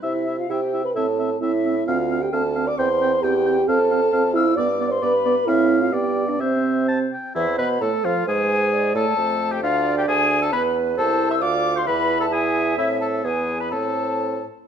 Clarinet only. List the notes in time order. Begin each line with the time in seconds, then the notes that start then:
0.03 E4
0.26 E4
0.49 E4
0.73 E4
0.96 C4
1.19 C4
1.41 C4
1.65 C4
1.87 C4
2.10 C4
2.32 C4
2.56 C4
2.78 C4
3.01 C4
3.23 C4
3.46 C4
3.68 C4
3.91 C4
4.12 C4
4.35 C4
4.58 B3
4.80 B3
5.02 B3
5.25 B3
5.47 C4
5.92 B3
6.40 C4
7.36 C5
7.81 A4
8.27 B4
8.72 D5
9.18 C5
9.62 D5
10.52 B4
10.97 C5
11.41 F5
11.87 E5
13.24 B4
13.72 C5